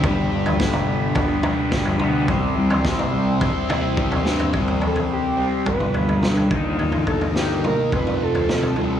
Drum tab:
SD |----o-------o---|----o---------o-|------------o---|----o-------o---|
T2 |-----o----o---o-|-----o----o-----|---------o--o---|------o--o--oo--|
FT |o--o----o-o--o--|o--o----o-o--o-o|oooo----o-oo-oo-|oooo----o--o-oo-|
BD |o---o---o---o---|o---o---o---o---|o-------o-----o-|--o-----o-------|